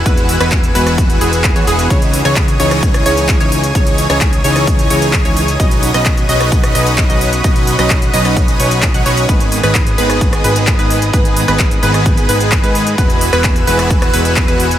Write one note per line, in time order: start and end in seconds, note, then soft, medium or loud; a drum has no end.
0.00 1.87 B4 medium
0.00 1.87 F#5 medium
0.00 1.87 G#5 medium
0.00 1.87 E6 medium
0.06 0.38 E1 loud
0.06 0.34 E3 medium
0.06 0.34 G#3 medium
0.06 0.34 B3 medium
0.06 0.34 F#4 medium
0.06 0.34 B4 medium
0.06 kick loud
0.06 closed hi-hat medium
0.17 closed hi-hat soft
0.29 open hi-hat loud
0.40 0.73 E1 loud
0.40 0.58 E3 loud
0.40 0.58 G#3 medium
0.40 0.58 B3 medium
0.40 0.58 F#4 medium
0.40 0.58 B4 loud
0.40 cross-stick medium
0.40 closed hi-hat soft
0.52 kick loud
0.52 clap loud
0.52 closed hi-hat medium
0.64 closed hi-hat soft
0.75 1.19 E1 loud
0.75 1.18 E3 loud
0.75 1.18 G#3 medium
0.75 1.18 B3 medium
0.75 1.18 F#4 medium
0.75 1.18 B4 loud
0.75 open hi-hat medium
0.87 cross-stick medium
0.87 closed hi-hat soft
0.98 kick loud
0.98 closed hi-hat medium
1.10 closed hi-hat soft
1.21 1.54 E1 loud
1.21 1.49 E3 medium
1.21 1.49 G#3 medium
1.21 1.49 B3 medium
1.21 1.49 F#4 medium
1.21 1.49 G#4 medium
1.21 open hi-hat loud
1.33 closed hi-hat soft
1.44 kick loud
1.44 clap loud
1.44 closed hi-hat medium
1.56 1.65 E2 loud
1.56 1.66 E3 medium
1.56 1.66 G#3 medium
1.56 1.66 B3 medium
1.56 1.66 F#4 medium
1.56 1.66 C#5 medium
1.56 closed hi-hat soft
1.67 1.88 E1 loud
1.67 1.85 E3 medium
1.67 1.85 G#3 medium
1.67 1.85 B3 medium
1.67 1.85 F#4 medium
1.67 1.85 G#4 loud
1.67 open hi-hat medium
1.79 closed hi-hat soft
1.90 2.23 C#2 loud
1.90 2.19 E3 medium
1.90 2.19 C#4 medium
1.90 2.19 D#4 medium
1.90 2.19 G#4 medium
1.90 2.19 C#5 medium
1.90 2.19 C#5 loud
1.90 9.25 C#5 medium
1.90 5.56 G#5 medium
1.90 12.94 D#6 medium
1.90 kick loud
1.90 closed hi-hat medium
2.02 closed hi-hat soft
2.13 open hi-hat loud
2.25 2.57 C#2 loud
2.25 2.43 E3 loud
2.25 2.43 C#4 medium
2.25 2.43 D#4 medium
2.25 2.43 G#4 medium
2.25 2.43 C#5 loud
2.25 cross-stick medium
2.25 closed hi-hat soft
2.36 kick loud
2.36 clap loud
2.36 closed hi-hat medium
2.48 closed hi-hat soft
2.60 3.04 C#2 loud
2.60 3.03 E3 loud
2.60 3.03 C#4 medium
2.60 3.03 D#4 medium
2.60 3.03 G#4 medium
2.60 3.03 C#5 loud
2.60 open hi-hat medium
2.71 cross-stick medium
2.71 closed hi-hat soft
2.83 kick loud
2.83 closed hi-hat medium
2.94 cross-stick medium
2.94 closed hi-hat soft
3.06 3.38 C#2 loud
3.06 3.38 E3 medium
3.06 3.38 C#4 medium
3.06 3.38 D#4 medium
3.06 3.38 G#4 medium
3.06 3.38 C#5 loud
3.06 open hi-hat loud
3.17 closed hi-hat soft
3.29 kick loud
3.29 clap loud
3.29 closed hi-hat medium
3.40 3.73 C#2 loud
3.40 3.58 E3 medium
3.40 3.58 C#4 medium
3.40 3.58 D#4 medium
3.40 3.58 G#4 medium
3.40 3.58 C#5 medium
3.40 closed hi-hat soft
3.52 open hi-hat medium
3.64 closed hi-hat soft
3.75 4.07 C#2 loud
3.75 4.03 E3 medium
3.75 4.03 C#4 medium
3.75 4.03 D#4 medium
3.75 4.03 G#4 medium
3.75 4.03 C#5 medium
3.75 4.03 C#5 loud
3.75 kick loud
3.75 closed hi-hat medium
3.87 closed hi-hat soft
3.98 open hi-hat loud
4.10 4.42 C#2 loud
4.10 4.27 E3 medium
4.10 4.27 C#4 medium
4.10 4.27 D#4 medium
4.10 4.27 G#4 medium
4.10 4.27 C#5 loud
4.10 cross-stick medium
4.10 closed hi-hat soft
4.21 kick loud
4.21 clap loud
4.21 closed hi-hat medium
4.33 closed hi-hat soft
4.44 4.88 C#2 loud
4.44 4.88 E3 loud
4.44 4.88 C#4 medium
4.44 4.88 D#4 medium
4.44 4.88 G#4 medium
4.44 4.88 C#5 loud
4.44 open hi-hat medium
4.56 cross-stick medium
4.56 closed hi-hat soft
4.67 kick loud
4.67 closed hi-hat medium
4.79 closed hi-hat soft
4.90 5.23 C#2 loud
4.90 5.22 E3 medium
4.90 5.22 C#4 medium
4.90 5.22 D#4 medium
4.90 5.22 G#4 medium
4.90 5.22 C#5 loud
4.90 open hi-hat loud
5.02 closed hi-hat soft
5.13 kick loud
5.13 clap loud
5.13 closed hi-hat medium
5.25 5.57 C#2 loud
5.25 5.43 E3 medium
5.25 5.43 C#4 medium
5.25 5.43 D#4 medium
5.25 5.43 G#4 medium
5.25 5.43 C#5 medium
5.25 closed hi-hat soft
5.37 open hi-hat medium
5.48 closed hi-hat soft
5.60 5.92 B1 loud
5.60 5.88 F#3 medium
5.60 5.88 C#4 medium
5.60 5.88 D#4 medium
5.60 5.88 B4 medium
5.60 5.88 D#5 medium
5.60 5.88 D#5 loud
5.60 9.25 F#5 medium
5.60 9.25 B5 medium
5.60 kick loud
5.60 closed hi-hat medium
5.71 closed hi-hat soft
5.83 open hi-hat loud
5.94 6.27 B1 loud
5.94 6.12 F#3 medium
5.94 6.12 C#4 medium
5.94 6.12 D#4 medium
5.94 6.12 B4 medium
5.94 6.12 D#5 loud
5.94 cross-stick medium
5.94 closed hi-hat soft
6.06 kick loud
6.06 clap loud
6.06 closed hi-hat medium
6.17 closed hi-hat soft
6.29 6.73 B1 loud
6.29 6.72 F#3 loud
6.29 6.72 C#4 medium
6.29 6.72 D#4 medium
6.29 6.72 B4 medium
6.29 6.72 D#5 loud
6.29 open hi-hat medium
6.41 cross-stick medium
6.41 closed hi-hat soft
6.52 kick loud
6.52 closed hi-hat medium
6.64 cross-stick medium
6.64 closed hi-hat soft
6.75 7.07 B1 loud
6.75 7.07 F#3 medium
6.75 7.07 C#4 medium
6.75 7.07 D#4 medium
6.75 7.07 B4 medium
6.75 7.07 D#5 loud
6.75 open hi-hat loud
6.87 closed hi-hat soft
6.98 kick loud
6.98 clap loud
6.98 closed hi-hat medium
7.10 7.42 B1 loud
7.10 7.27 F#3 medium
7.10 7.27 C#4 medium
7.10 7.27 D#4 medium
7.10 7.27 B4 medium
7.10 7.27 D#5 medium
7.10 closed hi-hat soft
7.21 open hi-hat medium
7.33 closed hi-hat soft
7.44 7.77 B1 loud
7.44 7.73 F#3 medium
7.44 7.72 C#4 medium
7.44 7.72 D#4 medium
7.44 7.72 B4 medium
7.44 7.72 D#5 medium
7.44 7.73 D#5 loud
7.44 kick loud
7.44 closed hi-hat medium
7.56 closed hi-hat soft
7.67 open hi-hat loud
7.79 8.11 B1 loud
7.79 7.97 F#3 medium
7.79 7.97 C#4 medium
7.79 7.97 D#4 medium
7.79 7.97 B4 medium
7.79 7.97 D#5 loud
7.79 cross-stick medium
7.79 closed hi-hat soft
7.90 kick loud
7.90 clap loud
7.90 closed hi-hat medium
8.02 closed hi-hat soft
8.14 8.57 B1 medium
8.14 8.57 F#3 loud
8.14 8.57 C#4 medium
8.14 8.57 D#4 medium
8.14 8.57 B4 medium
8.14 8.57 D#5 loud
8.14 open hi-hat medium
8.25 cross-stick medium
8.25 closed hi-hat soft
8.37 kick loud
8.37 closed hi-hat medium
8.48 closed hi-hat soft
8.60 8.92 B1 loud
8.60 8.88 F#3 medium
8.60 8.88 C#4 medium
8.60 8.88 D#4 medium
8.60 8.88 B4 medium
8.60 8.88 C#5 medium
8.60 open hi-hat loud
8.71 closed hi-hat soft
8.83 kick loud
8.83 clap loud
8.83 closed hi-hat medium
8.94 9.04 B1 loud
8.94 9.04 F#3 medium
8.94 9.04 C#4 medium
8.94 9.04 D#4 medium
8.94 9.04 B4 medium
8.94 9.04 F#5 medium
8.94 closed hi-hat soft
9.06 9.27 B1 loud
9.06 9.23 F#3 medium
9.06 9.23 C#4 medium
9.06 9.23 D#4 medium
9.06 9.23 B4 medium
9.06 9.23 C#5 loud
9.06 open hi-hat medium
9.17 closed hi-hat soft
9.29 9.61 G#1 loud
9.29 9.57 D#3 medium
9.29 9.57 G#3 medium
9.29 9.57 B3 medium
9.29 9.57 G#4 medium
9.29 9.57 B4 loud
9.29 9.57 B4 medium
9.29 14.79 B4 medium
9.29 12.95 D#5 medium
9.29 14.79 G#5 medium
9.29 kick loud
9.29 closed hi-hat medium
9.40 closed hi-hat soft
9.52 open hi-hat loud
9.63 9.96 G#1 loud
9.63 9.81 D#3 loud
9.63 9.81 G#3 medium
9.63 9.81 B3 medium
9.63 9.81 G#4 medium
9.63 9.81 B4 loud
9.63 cross-stick medium
9.63 closed hi-hat soft
9.75 kick loud
9.75 clap loud
9.75 closed hi-hat medium
9.87 closed hi-hat soft
9.98 10.42 G#1 loud
9.98 10.42 D#3 loud
9.98 10.42 G#3 medium
9.98 10.42 B3 medium
9.98 10.42 G#4 medium
9.98 10.42 B4 loud
9.98 open hi-hat medium
10.10 cross-stick medium
10.10 closed hi-hat soft
10.21 kick loud
10.21 closed hi-hat medium
10.33 cross-stick medium
10.33 closed hi-hat soft
10.44 10.77 G#1 loud
10.44 10.76 D#3 medium
10.44 10.76 G#3 medium
10.44 10.76 B3 medium
10.44 10.76 G#4 medium
10.44 10.76 B4 loud
10.44 open hi-hat loud
10.56 closed hi-hat soft
10.67 kick loud
10.67 clap loud
10.67 closed hi-hat medium
10.79 11.11 G#1 loud
10.79 10.97 D#3 medium
10.79 10.97 G#3 medium
10.79 10.97 B3 medium
10.79 10.97 G#4 medium
10.79 10.97 B4 loud
10.79 10.97 B4 medium
10.79 closed hi-hat soft
10.90 open hi-hat medium
11.02 closed hi-hat soft
11.13 11.46 G#1 loud
11.13 11.42 D#3 medium
11.13 11.42 G#3 medium
11.13 11.42 B3 medium
11.13 11.42 G#4 medium
11.13 11.42 B4 medium
11.13 11.42 B4 loud
11.13 kick loud
11.13 closed hi-hat medium
11.25 closed hi-hat soft
11.37 open hi-hat loud
11.48 11.80 G#1 loud
11.48 11.66 D#3 medium
11.48 11.66 G#3 medium
11.48 11.66 B3 medium
11.48 11.66 G#4 medium
11.48 11.66 B4 loud
11.48 cross-stick medium
11.48 closed hi-hat soft
11.60 kick loud
11.60 clap loud
11.60 closed hi-hat medium
11.71 closed hi-hat soft
11.83 12.27 G#1 loud
11.83 12.26 D#3 loud
11.83 12.26 G#3 medium
11.83 12.26 B3 medium
11.83 12.26 G#4 medium
11.83 12.26 B4 loud
11.83 open hi-hat loud
11.94 cross-stick medium
11.94 closed hi-hat soft
12.06 kick loud
12.06 closed hi-hat medium
12.17 closed hi-hat soft
12.29 12.61 G#1 loud
12.29 12.61 D#3 medium
12.29 12.61 G#3 medium
12.29 12.61 B3 medium
12.29 12.61 G#4 medium
12.29 12.61 B4 loud
12.29 open hi-hat loud
12.40 closed hi-hat soft
12.52 kick loud
12.52 clap loud
12.52 closed hi-hat medium
12.64 12.96 G#2 loud
12.64 12.81 D#3 medium
12.64 12.81 G#3 medium
12.64 12.81 B3 medium
12.64 12.81 G#4 medium
12.64 12.81 B4 medium
12.64 closed hi-hat soft
12.75 open hi-hat medium
12.87 closed hi-hat soft
12.98 13.30 E1 loud
12.98 13.26 E3 medium
12.98 13.26 G#3 medium
12.98 13.26 B3 medium
12.98 13.26 F#4 medium
12.98 13.26 B4 loud
12.98 13.26 B4 medium
12.98 14.79 F#5 medium
12.98 14.79 E6 medium
12.98 kick loud
12.98 closed hi-hat medium
13.10 closed hi-hat soft
13.21 open hi-hat loud
13.33 13.65 E1 loud
13.33 13.50 E3 loud
13.33 13.50 G#3 medium
13.33 13.50 B3 medium
13.33 13.50 F#4 medium
13.33 13.50 B4 loud
13.33 cross-stick medium
13.33 closed hi-hat soft
13.44 kick loud
13.44 clap loud
13.44 closed hi-hat medium
13.56 closed hi-hat soft
13.67 14.11 E1 loud
13.67 14.11 E3 loud
13.67 14.11 G#3 medium
13.67 14.11 B3 medium
13.67 14.11 F#4 medium
13.67 14.11 B4 loud
13.67 open hi-hat loud
13.79 cross-stick medium
13.79 closed hi-hat soft
13.90 kick loud
13.90 closed hi-hat medium
14.02 cross-stick medium
14.02 closed hi-hat soft
14.14 14.46 E1 loud
14.14 14.45 E3 medium
14.14 14.45 G#3 medium
14.14 14.45 B3 medium
14.14 14.45 F#4 medium
14.14 14.45 B4 loud
14.14 open hi-hat loud
14.25 closed hi-hat soft
14.36 kick loud
14.36 clap loud
14.36 closed hi-hat medium
14.48 14.79 E1 loud
14.48 14.66 E3 medium
14.48 14.66 G#3 medium
14.48 14.66 B3 medium
14.48 14.66 F#4 medium
14.48 14.66 B4 medium
14.48 closed hi-hat soft
14.60 open hi-hat medium
14.71 closed hi-hat soft